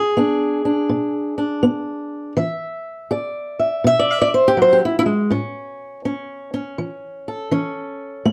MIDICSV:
0, 0, Header, 1, 2, 480
1, 0, Start_track
1, 0, Tempo, 734394
1, 1554, Time_signature, 4, 2, 24, 8
1, 5441, End_track
2, 0, Start_track
2, 0, Title_t, "Steel-string acoustic guitar"
2, 0, Program_c, 0, 25
2, 0, Note_on_c, 0, 52, 76
2, 0, Note_on_c, 0, 68, 87
2, 76, Note_off_c, 0, 52, 0
2, 109, Note_on_c, 0, 59, 64
2, 114, Note_on_c, 0, 62, 50
2, 423, Note_off_c, 0, 62, 0
2, 426, Note_on_c, 0, 62, 46
2, 559, Note_off_c, 0, 59, 0
2, 584, Note_on_c, 0, 47, 59
2, 893, Note_off_c, 0, 62, 0
2, 901, Note_on_c, 0, 62, 43
2, 1036, Note_off_c, 0, 47, 0
2, 1064, Note_on_c, 0, 59, 71
2, 1516, Note_off_c, 0, 59, 0
2, 1529, Note_off_c, 0, 62, 0
2, 1546, Note_on_c, 0, 52, 82
2, 1549, Note_off_c, 0, 68, 0
2, 1552, Note_on_c, 0, 76, 52
2, 1997, Note_off_c, 0, 52, 0
2, 2031, Note_on_c, 0, 68, 61
2, 2036, Note_on_c, 0, 74, 44
2, 2347, Note_off_c, 0, 76, 0
2, 2349, Note_on_c, 0, 76, 47
2, 2479, Note_off_c, 0, 68, 0
2, 2512, Note_on_c, 0, 47, 65
2, 2525, Note_off_c, 0, 76, 0
2, 2527, Note_on_c, 0, 76, 106
2, 2603, Note_off_c, 0, 74, 0
2, 2611, Note_on_c, 0, 74, 78
2, 2675, Note_off_c, 0, 76, 0
2, 2683, Note_on_c, 0, 76, 82
2, 2748, Note_off_c, 0, 74, 0
2, 2755, Note_on_c, 0, 74, 92
2, 2796, Note_off_c, 0, 74, 0
2, 2837, Note_on_c, 0, 72, 83
2, 2926, Note_on_c, 0, 67, 93
2, 2941, Note_off_c, 0, 72, 0
2, 2960, Note_off_c, 0, 47, 0
2, 2987, Note_off_c, 0, 67, 0
2, 2987, Note_on_c, 0, 54, 71
2, 3018, Note_on_c, 0, 72, 84
2, 3090, Note_on_c, 0, 67, 74
2, 3111, Note_off_c, 0, 72, 0
2, 3149, Note_off_c, 0, 67, 0
2, 3150, Note_off_c, 0, 54, 0
2, 3171, Note_on_c, 0, 64, 81
2, 3253, Note_off_c, 0, 64, 0
2, 3260, Note_on_c, 0, 64, 106
2, 3304, Note_off_c, 0, 64, 0
2, 3306, Note_on_c, 0, 56, 65
2, 3314, Note_off_c, 0, 76, 0
2, 3467, Note_on_c, 0, 45, 75
2, 3472, Note_off_c, 0, 56, 0
2, 3473, Note_on_c, 0, 61, 56
2, 3918, Note_off_c, 0, 45, 0
2, 3953, Note_off_c, 0, 61, 0
2, 3956, Note_on_c, 0, 61, 51
2, 4270, Note_off_c, 0, 61, 0
2, 4272, Note_on_c, 0, 61, 50
2, 4433, Note_on_c, 0, 52, 63
2, 4758, Note_on_c, 0, 69, 45
2, 4881, Note_off_c, 0, 52, 0
2, 4911, Note_on_c, 0, 52, 68
2, 4912, Note_off_c, 0, 61, 0
2, 4915, Note_on_c, 0, 61, 53
2, 5360, Note_off_c, 0, 52, 0
2, 5395, Note_on_c, 0, 57, 83
2, 5441, Note_off_c, 0, 57, 0
2, 5441, Note_off_c, 0, 61, 0
2, 5441, Note_off_c, 0, 69, 0
2, 5441, End_track
0, 0, End_of_file